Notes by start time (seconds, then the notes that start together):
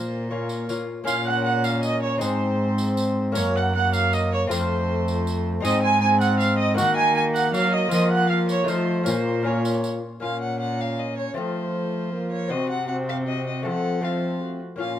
Already playing: A#2 A#3 F4 C5
0.30 A#3 C#4 F4 C#5
0.49 tambourine
0.69 A#3 C#4 F4, tambourine
1.04 A#2 A#3 C#4 F4 F5, tambourine
1.27 F#5
1.44 F#5
1.64 F5, tambourine
1.83 D#5, tambourine
2.02 C#5
2.18 G#2 C4 D#4 G#4 C5, tambourine
2.22 G#2 C4
2.78 tambourine
2.97 tambourine
3.32 F#2 A#3 C#4 A#4, tambourine
3.36 F#2 A#3 C#5
3.56 F#5
3.75 A#3 F#5
3.93 F5, tambourine
4.13 D#5, tambourine
4.32 C#5
4.47 F2 A3 C4 F4 A4 C5
4.51 F2 C5, tambourine
5.08 tambourine
5.27 tambourine
5.61 G#2 C4 D#4 G#4 D#5
5.65 tambourine
5.82 G#5
6.01 C4 G#5
6.21 F#5, tambourine
6.39 F5, tambourine
6.58 D#5
6.74 D#3 A#3 D#4 F#4 F#5, tambourine
6.79 A#3
6.96 G#5
7.15 G#5
7.35 F#5, tambourine
7.53 F#3 F5, tambourine
7.73 D#5
7.88 F3 A#3 C4 F4, tambourine
7.92 A#3 D#5
8.11 F#5
8.28 A#3 F5
8.49 C#5, tambourine
8.64 F3 A3 D#4 F4
8.68 F3 A3 C5, tambourine
9.03 A#2 A#3 C#4 F4 C5, tambourine
9.08 A#2 C5
9.43 A#3 C#4 F4 C#5
9.47 C#5
9.65 tambourine
9.84 tambourine
10.20 A#2 A#3 C#4 F4 F5
10.25 F4
10.41 F#5
10.60 F#5
10.81 F5
10.99 D#5
11.18 C#5
11.34 F3 A3 C4 F4 C5
12.13 A#3
12.32 C#5
12.48 C3 C4 F#4 D#5
12.70 F#5
12.88 C4 F#4 F#5
13.09 F5
13.27 C4 F#4 D#5
13.47 D#5
13.62 F3 A3 C4 A4 F#5
14.01 A3 C4 F4 A4 F5
14.43 F#4
14.76 A#2 A#3 C#4 F4
14.80 A#2 F4 F5